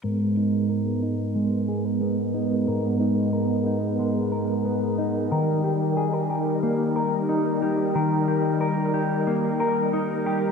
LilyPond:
<<
  \new Staff \with { instrumentName = "Clean electric guitar" } { \time 4/4 \key gis \minor \tempo 4 = 91 <gis, ais'>8 dis'8 ais'8 dis'8 gis8 gis'16 ais'16 b8 dis'8 | <gis, ais'>8 dis'8 ais'8 dis'8 gis8 ais'8 b8 dis'8 | <dis ais'>8 g'8 gis'16 ais'16 g'8 ais8 ais'8 dis'8 g'8 | <dis ais'>8 g'8 ais'8 g'8 ais8 ais'8 dis'8 g'8 | }
  \new Staff \with { instrumentName = "String machine" } { \time 4/4 \key gis \minor << { ais'1~ | ais'1~ | ais'1~ | ais'1 | } \\ { <gis b>1~ | <gis b>1 | <g dis'>1~ | <g dis'>1 | } >> }
>>